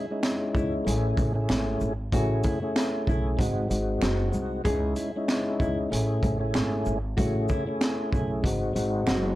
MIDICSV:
0, 0, Header, 1, 5, 480
1, 0, Start_track
1, 0, Tempo, 631579
1, 1613, Time_signature, 4, 2, 24, 8
1, 7108, End_track
2, 0, Start_track
2, 0, Title_t, "Nylon-string guitar"
2, 0, Program_c, 0, 24
2, 0, Note_on_c, 0, 64, 85
2, 149, Note_off_c, 0, 64, 0
2, 421, Note_on_c, 0, 64, 81
2, 551, Note_off_c, 0, 64, 0
2, 1621, Note_on_c, 0, 66, 94
2, 1834, Note_off_c, 0, 66, 0
2, 1857, Note_on_c, 0, 64, 79
2, 2072, Note_off_c, 0, 64, 0
2, 2348, Note_on_c, 0, 64, 82
2, 2475, Note_off_c, 0, 64, 0
2, 3060, Note_on_c, 0, 66, 80
2, 3273, Note_off_c, 0, 66, 0
2, 3530, Note_on_c, 0, 68, 109
2, 3748, Note_off_c, 0, 68, 0
2, 3773, Note_on_c, 0, 64, 81
2, 3989, Note_off_c, 0, 64, 0
2, 4252, Note_on_c, 0, 64, 90
2, 4387, Note_off_c, 0, 64, 0
2, 5447, Note_on_c, 0, 66, 97
2, 5666, Note_off_c, 0, 66, 0
2, 5693, Note_on_c, 0, 64, 80
2, 5910, Note_off_c, 0, 64, 0
2, 6172, Note_on_c, 0, 64, 77
2, 6306, Note_off_c, 0, 64, 0
2, 6894, Note_on_c, 0, 66, 90
2, 7108, Note_off_c, 0, 66, 0
2, 7108, End_track
3, 0, Start_track
3, 0, Title_t, "Tonewheel organ"
3, 0, Program_c, 1, 16
3, 80, Note_on_c, 1, 56, 97
3, 84, Note_on_c, 1, 61, 88
3, 90, Note_on_c, 1, 63, 85
3, 95, Note_on_c, 1, 64, 100
3, 642, Note_off_c, 1, 61, 0
3, 646, Note_on_c, 1, 57, 87
3, 647, Note_off_c, 1, 64, 0
3, 651, Note_on_c, 1, 61, 89
3, 652, Note_off_c, 1, 56, 0
3, 656, Note_on_c, 1, 64, 83
3, 658, Note_off_c, 1, 63, 0
3, 662, Note_on_c, 1, 68, 110
3, 1003, Note_off_c, 1, 57, 0
3, 1005, Note_off_c, 1, 61, 0
3, 1008, Note_off_c, 1, 64, 0
3, 1011, Note_off_c, 1, 68, 0
3, 1017, Note_on_c, 1, 57, 88
3, 1022, Note_on_c, 1, 61, 87
3, 1028, Note_on_c, 1, 64, 78
3, 1033, Note_on_c, 1, 68, 108
3, 1462, Note_off_c, 1, 57, 0
3, 1465, Note_off_c, 1, 61, 0
3, 1468, Note_off_c, 1, 64, 0
3, 1470, Note_off_c, 1, 68, 0
3, 1613, Note_on_c, 1, 57, 100
3, 1619, Note_on_c, 1, 61, 88
3, 1624, Note_on_c, 1, 64, 86
3, 1629, Note_on_c, 1, 68, 99
3, 1966, Note_off_c, 1, 57, 0
3, 1969, Note_off_c, 1, 61, 0
3, 1972, Note_off_c, 1, 64, 0
3, 1974, Note_off_c, 1, 68, 0
3, 1988, Note_on_c, 1, 57, 97
3, 1993, Note_on_c, 1, 61, 84
3, 1998, Note_on_c, 1, 64, 88
3, 2003, Note_on_c, 1, 68, 105
3, 2561, Note_on_c, 1, 56, 101
3, 2565, Note_on_c, 1, 60, 89
3, 2566, Note_off_c, 1, 57, 0
3, 2569, Note_off_c, 1, 61, 0
3, 2571, Note_on_c, 1, 63, 99
3, 2572, Note_off_c, 1, 64, 0
3, 2574, Note_off_c, 1, 68, 0
3, 2576, Note_on_c, 1, 66, 97
3, 2790, Note_off_c, 1, 56, 0
3, 2795, Note_off_c, 1, 60, 0
3, 2798, Note_off_c, 1, 63, 0
3, 2799, Note_on_c, 1, 56, 93
3, 2800, Note_off_c, 1, 66, 0
3, 2805, Note_on_c, 1, 60, 91
3, 2810, Note_on_c, 1, 63, 92
3, 2815, Note_on_c, 1, 66, 98
3, 3257, Note_off_c, 1, 56, 0
3, 3260, Note_off_c, 1, 60, 0
3, 3262, Note_off_c, 1, 63, 0
3, 3265, Note_off_c, 1, 66, 0
3, 3269, Note_on_c, 1, 56, 80
3, 3275, Note_on_c, 1, 60, 75
3, 3281, Note_on_c, 1, 63, 72
3, 3286, Note_on_c, 1, 66, 90
3, 3507, Note_off_c, 1, 56, 0
3, 3510, Note_off_c, 1, 60, 0
3, 3513, Note_off_c, 1, 63, 0
3, 3515, Note_off_c, 1, 66, 0
3, 3526, Note_on_c, 1, 56, 97
3, 3532, Note_on_c, 1, 61, 94
3, 3537, Note_on_c, 1, 63, 100
3, 3543, Note_on_c, 1, 64, 111
3, 3883, Note_off_c, 1, 56, 0
3, 3886, Note_off_c, 1, 61, 0
3, 3888, Note_off_c, 1, 63, 0
3, 3891, Note_off_c, 1, 64, 0
3, 3919, Note_on_c, 1, 56, 96
3, 3924, Note_on_c, 1, 61, 90
3, 3929, Note_on_c, 1, 63, 83
3, 3934, Note_on_c, 1, 64, 106
3, 4482, Note_off_c, 1, 61, 0
3, 4485, Note_on_c, 1, 57, 90
3, 4487, Note_off_c, 1, 64, 0
3, 4491, Note_on_c, 1, 61, 92
3, 4492, Note_off_c, 1, 56, 0
3, 4496, Note_on_c, 1, 64, 89
3, 4497, Note_off_c, 1, 63, 0
3, 4501, Note_on_c, 1, 68, 111
3, 4842, Note_off_c, 1, 57, 0
3, 4845, Note_off_c, 1, 61, 0
3, 4848, Note_off_c, 1, 64, 0
3, 4850, Note_off_c, 1, 68, 0
3, 4854, Note_on_c, 1, 57, 87
3, 4859, Note_on_c, 1, 61, 87
3, 4864, Note_on_c, 1, 64, 82
3, 4870, Note_on_c, 1, 68, 106
3, 5301, Note_off_c, 1, 57, 0
3, 5303, Note_off_c, 1, 61, 0
3, 5306, Note_off_c, 1, 64, 0
3, 5308, Note_off_c, 1, 68, 0
3, 5453, Note_on_c, 1, 57, 100
3, 5459, Note_on_c, 1, 61, 88
3, 5464, Note_on_c, 1, 64, 88
3, 5469, Note_on_c, 1, 68, 95
3, 5806, Note_off_c, 1, 57, 0
3, 5809, Note_off_c, 1, 61, 0
3, 5812, Note_off_c, 1, 64, 0
3, 5814, Note_off_c, 1, 68, 0
3, 5826, Note_on_c, 1, 57, 96
3, 5832, Note_on_c, 1, 61, 83
3, 5837, Note_on_c, 1, 64, 91
3, 5842, Note_on_c, 1, 68, 106
3, 6400, Note_on_c, 1, 56, 99
3, 6405, Note_off_c, 1, 57, 0
3, 6405, Note_on_c, 1, 60, 90
3, 6409, Note_off_c, 1, 61, 0
3, 6410, Note_on_c, 1, 63, 95
3, 6411, Note_off_c, 1, 64, 0
3, 6414, Note_off_c, 1, 68, 0
3, 6416, Note_on_c, 1, 66, 95
3, 6629, Note_off_c, 1, 56, 0
3, 6635, Note_off_c, 1, 60, 0
3, 6637, Note_off_c, 1, 63, 0
3, 6639, Note_on_c, 1, 56, 95
3, 6640, Note_off_c, 1, 66, 0
3, 6644, Note_on_c, 1, 60, 91
3, 6649, Note_on_c, 1, 63, 93
3, 6654, Note_on_c, 1, 66, 99
3, 7097, Note_off_c, 1, 56, 0
3, 7099, Note_off_c, 1, 60, 0
3, 7102, Note_off_c, 1, 63, 0
3, 7105, Note_off_c, 1, 66, 0
3, 7108, End_track
4, 0, Start_track
4, 0, Title_t, "Upright bass"
4, 0, Program_c, 2, 32
4, 417, Note_on_c, 2, 37, 92
4, 623, Note_off_c, 2, 37, 0
4, 658, Note_on_c, 2, 33, 108
4, 864, Note_off_c, 2, 33, 0
4, 894, Note_on_c, 2, 33, 102
4, 1101, Note_off_c, 2, 33, 0
4, 1139, Note_on_c, 2, 32, 97
4, 1344, Note_off_c, 2, 32, 0
4, 1378, Note_on_c, 2, 32, 96
4, 1584, Note_off_c, 2, 32, 0
4, 1617, Note_on_c, 2, 33, 111
4, 1823, Note_off_c, 2, 33, 0
4, 2337, Note_on_c, 2, 35, 88
4, 2543, Note_off_c, 2, 35, 0
4, 2576, Note_on_c, 2, 32, 112
4, 2782, Note_off_c, 2, 32, 0
4, 2818, Note_on_c, 2, 32, 101
4, 3023, Note_off_c, 2, 32, 0
4, 3058, Note_on_c, 2, 30, 103
4, 3264, Note_off_c, 2, 30, 0
4, 3298, Note_on_c, 2, 36, 97
4, 3504, Note_off_c, 2, 36, 0
4, 3537, Note_on_c, 2, 37, 121
4, 3743, Note_off_c, 2, 37, 0
4, 4258, Note_on_c, 2, 37, 97
4, 4463, Note_off_c, 2, 37, 0
4, 4498, Note_on_c, 2, 33, 107
4, 4703, Note_off_c, 2, 33, 0
4, 4734, Note_on_c, 2, 33, 101
4, 4941, Note_off_c, 2, 33, 0
4, 4978, Note_on_c, 2, 32, 97
4, 5183, Note_off_c, 2, 32, 0
4, 5218, Note_on_c, 2, 32, 95
4, 5423, Note_off_c, 2, 32, 0
4, 5457, Note_on_c, 2, 33, 108
4, 5663, Note_off_c, 2, 33, 0
4, 6177, Note_on_c, 2, 35, 87
4, 6383, Note_off_c, 2, 35, 0
4, 6415, Note_on_c, 2, 32, 111
4, 6622, Note_off_c, 2, 32, 0
4, 6657, Note_on_c, 2, 32, 100
4, 6862, Note_off_c, 2, 32, 0
4, 6896, Note_on_c, 2, 30, 97
4, 7102, Note_off_c, 2, 30, 0
4, 7108, End_track
5, 0, Start_track
5, 0, Title_t, "Drums"
5, 174, Note_on_c, 9, 38, 116
5, 177, Note_on_c, 9, 26, 75
5, 187, Note_on_c, 9, 42, 78
5, 250, Note_off_c, 9, 38, 0
5, 253, Note_off_c, 9, 26, 0
5, 263, Note_off_c, 9, 42, 0
5, 415, Note_on_c, 9, 36, 100
5, 427, Note_on_c, 9, 82, 47
5, 491, Note_off_c, 9, 36, 0
5, 503, Note_off_c, 9, 82, 0
5, 665, Note_on_c, 9, 42, 87
5, 741, Note_off_c, 9, 42, 0
5, 892, Note_on_c, 9, 36, 103
5, 898, Note_on_c, 9, 42, 52
5, 898, Note_on_c, 9, 82, 52
5, 968, Note_off_c, 9, 36, 0
5, 974, Note_off_c, 9, 42, 0
5, 974, Note_off_c, 9, 82, 0
5, 1132, Note_on_c, 9, 26, 69
5, 1138, Note_on_c, 9, 38, 114
5, 1145, Note_on_c, 9, 42, 74
5, 1208, Note_off_c, 9, 26, 0
5, 1214, Note_off_c, 9, 38, 0
5, 1221, Note_off_c, 9, 42, 0
5, 1371, Note_on_c, 9, 82, 58
5, 1447, Note_off_c, 9, 82, 0
5, 1615, Note_on_c, 9, 36, 110
5, 1617, Note_on_c, 9, 42, 85
5, 1691, Note_off_c, 9, 36, 0
5, 1693, Note_off_c, 9, 42, 0
5, 1850, Note_on_c, 9, 42, 53
5, 1850, Note_on_c, 9, 82, 53
5, 1858, Note_on_c, 9, 36, 100
5, 1926, Note_off_c, 9, 42, 0
5, 1926, Note_off_c, 9, 82, 0
5, 1934, Note_off_c, 9, 36, 0
5, 2097, Note_on_c, 9, 38, 116
5, 2099, Note_on_c, 9, 26, 70
5, 2109, Note_on_c, 9, 42, 78
5, 2173, Note_off_c, 9, 38, 0
5, 2175, Note_off_c, 9, 26, 0
5, 2185, Note_off_c, 9, 42, 0
5, 2335, Note_on_c, 9, 36, 98
5, 2347, Note_on_c, 9, 82, 45
5, 2411, Note_off_c, 9, 36, 0
5, 2423, Note_off_c, 9, 82, 0
5, 2574, Note_on_c, 9, 36, 98
5, 2586, Note_on_c, 9, 42, 87
5, 2650, Note_off_c, 9, 36, 0
5, 2662, Note_off_c, 9, 42, 0
5, 2818, Note_on_c, 9, 42, 52
5, 2818, Note_on_c, 9, 82, 52
5, 2894, Note_off_c, 9, 42, 0
5, 2894, Note_off_c, 9, 82, 0
5, 3052, Note_on_c, 9, 26, 69
5, 3058, Note_on_c, 9, 38, 114
5, 3065, Note_on_c, 9, 42, 74
5, 3128, Note_off_c, 9, 26, 0
5, 3134, Note_off_c, 9, 38, 0
5, 3141, Note_off_c, 9, 42, 0
5, 3290, Note_on_c, 9, 82, 61
5, 3366, Note_off_c, 9, 82, 0
5, 3535, Note_on_c, 9, 36, 106
5, 3537, Note_on_c, 9, 42, 88
5, 3611, Note_off_c, 9, 36, 0
5, 3613, Note_off_c, 9, 42, 0
5, 3770, Note_on_c, 9, 42, 55
5, 3770, Note_on_c, 9, 82, 54
5, 3846, Note_off_c, 9, 42, 0
5, 3846, Note_off_c, 9, 82, 0
5, 4015, Note_on_c, 9, 38, 120
5, 4019, Note_on_c, 9, 26, 69
5, 4028, Note_on_c, 9, 42, 78
5, 4091, Note_off_c, 9, 38, 0
5, 4095, Note_off_c, 9, 26, 0
5, 4104, Note_off_c, 9, 42, 0
5, 4255, Note_on_c, 9, 36, 97
5, 4267, Note_on_c, 9, 82, 44
5, 4331, Note_off_c, 9, 36, 0
5, 4343, Note_off_c, 9, 82, 0
5, 4506, Note_on_c, 9, 42, 90
5, 4582, Note_off_c, 9, 42, 0
5, 4733, Note_on_c, 9, 36, 99
5, 4739, Note_on_c, 9, 42, 54
5, 4739, Note_on_c, 9, 82, 52
5, 4809, Note_off_c, 9, 36, 0
5, 4815, Note_off_c, 9, 42, 0
5, 4815, Note_off_c, 9, 82, 0
5, 4971, Note_on_c, 9, 26, 71
5, 4978, Note_on_c, 9, 38, 114
5, 4985, Note_on_c, 9, 42, 74
5, 5047, Note_off_c, 9, 26, 0
5, 5054, Note_off_c, 9, 38, 0
5, 5061, Note_off_c, 9, 42, 0
5, 5211, Note_on_c, 9, 82, 61
5, 5287, Note_off_c, 9, 82, 0
5, 5455, Note_on_c, 9, 36, 105
5, 5457, Note_on_c, 9, 42, 88
5, 5531, Note_off_c, 9, 36, 0
5, 5533, Note_off_c, 9, 42, 0
5, 5690, Note_on_c, 9, 82, 55
5, 5698, Note_on_c, 9, 36, 97
5, 5766, Note_off_c, 9, 82, 0
5, 5774, Note_off_c, 9, 36, 0
5, 5935, Note_on_c, 9, 38, 121
5, 5938, Note_on_c, 9, 26, 74
5, 5948, Note_on_c, 9, 42, 78
5, 6011, Note_off_c, 9, 38, 0
5, 6014, Note_off_c, 9, 26, 0
5, 6024, Note_off_c, 9, 42, 0
5, 6175, Note_on_c, 9, 36, 100
5, 6188, Note_on_c, 9, 82, 45
5, 6251, Note_off_c, 9, 36, 0
5, 6264, Note_off_c, 9, 82, 0
5, 6413, Note_on_c, 9, 36, 95
5, 6425, Note_on_c, 9, 42, 91
5, 6489, Note_off_c, 9, 36, 0
5, 6501, Note_off_c, 9, 42, 0
5, 6658, Note_on_c, 9, 42, 53
5, 6658, Note_on_c, 9, 82, 52
5, 6734, Note_off_c, 9, 42, 0
5, 6734, Note_off_c, 9, 82, 0
5, 6891, Note_on_c, 9, 26, 67
5, 6897, Note_on_c, 9, 38, 118
5, 6903, Note_on_c, 9, 42, 73
5, 6967, Note_off_c, 9, 26, 0
5, 6973, Note_off_c, 9, 38, 0
5, 6979, Note_off_c, 9, 42, 0
5, 7108, End_track
0, 0, End_of_file